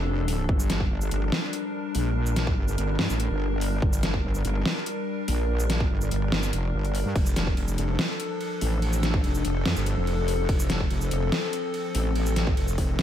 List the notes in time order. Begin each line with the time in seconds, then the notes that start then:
Already playing: F1 F3 D4 A4
0.28 open hi-hat
0.49 G1 G3 A#4, kick
0.60 shaker
0.70 snare, closed hi-hat
0.80 kick
0.91 G1
1.01 shaker
1.11 G1, closed hi-hat
1.32 snare
1.53 closed hi-hat
1.95 A#1, open hi-hat
2.26 shaker
2.36 snare, closed hi-hat
2.47 kick
2.57 G1
2.68 shaker
2.78 G1, closed hi-hat
2.99 G2, snare
3.10 A1, shaker
3.20 closed hi-hat
3.30 G1
3.61 open hi-hat
3.82 G1, kick
3.93 shaker
4.03 snare, closed hi-hat
4.14 kick
4.24 G1
4.35 shaker
4.45 G1, closed hi-hat
4.66 snare
4.86 closed hi-hat
5.28 A#1, open hi-hat
5.60 shaker
5.70 snare, closed hi-hat
5.80 kick
5.91 G1
6.01 shaker
6.11 G1, closed hi-hat
6.32 G1, snare
6.43 shaker
6.53 F1, closed hi-hat
6.74 G1
6.85 closed hi-hat
6.95 open hi-hat
7.05 G2
7.15 F1 F3 D4 A4, kick, ride
7.26 shaker
7.36 snare, closed hi-hat
7.47 kick
7.57 F1, ride
7.68 shaker
7.78 F1, closed hi-hat
7.99 snare, ride
8.20 closed hi-hat
8.41 ride
8.61 A1, open hi-hat
8.82 ride
8.93 shaker
9.03 snare, closed hi-hat
9.14 kick
9.24 F1, ride
9.35 shaker
9.45 F1, closed hi-hat
9.66 F2, snare, ride
9.76 G1, shaker
9.86 closed hi-hat
9.97 F1
10.07 ride
10.28 open hi-hat
10.49 F1 C4, kick, ride
10.60 shaker
10.70 snare, closed hi-hat
10.80 kick
10.90 F1, ride
11.01 shaker
11.11 F1, closed hi-hat
11.32 snare, ride
11.53 closed hi-hat
11.74 ride
11.95 A1, open hi-hat
12.15 ride
12.26 shaker
12.36 snare, closed hi-hat
12.47 kick
12.57 F1, ride
12.68 shaker
12.78 F1, kick, open hi-hat
12.99 F1, snare, ride